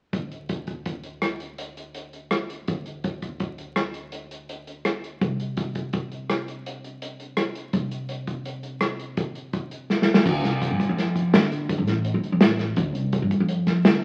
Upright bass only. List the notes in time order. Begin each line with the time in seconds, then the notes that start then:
0.13 D2
2.68 D2
5.21 C2
7.73 C2
10.26 D2
10.43 C2
10.70 G2
10.89 F2
11.33 D3
11.78 A1
12.14 D2
12.32 F2
12.41 A1
12.77 D2
12.94 C2
13.22 G2
13.40 F2
13.85 D3